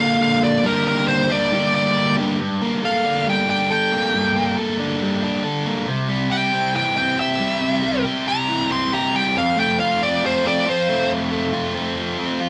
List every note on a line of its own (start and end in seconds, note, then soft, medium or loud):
0.00 0.64 A#2 medium
0.00 0.63 D3 medium
0.00 0.66 A#3 medium
0.00 0.66 D4 medium
0.00 0.63 F4 medium
0.00 0.21 F5 medium
0.23 0.43 F5 loud
0.44 0.66 D5 loud
0.64 1.28 G2 medium
0.64 1.28 D3 medium
0.64 1.29 G3 medium
0.64 1.29 A#3 loud
0.64 1.29 D4 medium
0.64 1.28 G4 loud
0.64 0.87 A#4 medium
0.88 1.08 A#4 medium
1.08 1.30 C5 medium
1.30 1.51 G2 medium
1.30 1.52 D3 medium
1.30 1.51 G3 medium
1.30 1.51 A#3 medium
1.30 1.50 D4 medium
1.30 1.50 G4 medium
1.30 1.74 D5 medium
1.52 2.16 G2 medium
1.52 2.16 D3 medium
1.52 2.17 G3 medium
1.52 2.17 A#3 medium
1.52 2.17 D4 loud
1.52 2.16 G4 medium
1.75 2.15 D5 medium
2.17 2.38 G2 medium
2.17 2.39 D3 medium
2.17 2.39 G3 medium
2.17 2.38 A#3 medium
2.17 2.38 D4 medium
2.17 2.37 G4 medium
2.39 3.48 G2 medium
2.61 3.70 A#3 medium
2.83 3.69 A4 medium
2.83 3.26 F5 medium
3.05 3.48 D4 medium
3.26 4.59 G3 medium
3.26 3.49 G5 medium
3.49 4.57 D4 medium
3.49 3.70 G5 medium
3.70 4.55 A4 medium
3.70 4.55 G5 medium
3.92 4.35 A#3 medium
4.14 5.23 G2 medium
4.36 5.44 A#3 medium
4.56 5.42 A4 medium
4.79 5.21 D4 medium
5.01 6.09 G3 medium
5.23 5.88 D4 medium
5.44 5.87 A4 medium
5.65 5.87 A#3 medium
5.87 6.96 C3 medium
6.09 7.18 G3 medium
6.30 7.16 G4 medium
6.30 6.74 G5 medium
6.53 6.96 C4 medium
6.74 7.83 E3 medium
6.74 6.97 G5 medium
6.96 8.27 C4 medium
6.96 7.18 G5 medium
7.18 8.03 G4 medium
7.18 8.04 E5 loud
7.39 7.81 G3 medium
7.61 8.70 C3 medium
7.82 8.92 G3 medium
8.05 8.92 G4 medium
8.27 8.71 C4 medium
8.27 8.70 A#5 loud
8.49 9.36 E3 medium
8.71 10.01 C4 medium
8.71 8.93 C6 medium
8.93 9.37 G4 medium
8.93 9.15 A#5 medium
9.14 9.36 G3 medium
9.14 9.36 G5 medium
9.35 10.45 F2 medium
9.35 9.58 F5 medium
9.57 10.66 A3 medium
9.57 9.79 G5 medium
9.80 10.66 F4 medium
9.80 10.01 F5 medium
10.02 10.44 C4 medium
10.02 10.24 D5 medium
10.24 11.97 F3 medium
10.24 10.46 C5 medium
10.45 11.54 C4 medium
10.45 10.68 D5 medium
10.67 11.53 F4 medium
10.67 11.11 C5 loud
10.89 11.30 A3 medium
11.11 12.20 F2 medium
11.31 12.41 A3 medium
11.53 12.41 F4 medium
11.75 12.18 C4 medium
11.97 12.49 F3 medium
12.19 12.49 C4 medium
12.41 12.49 F4 medium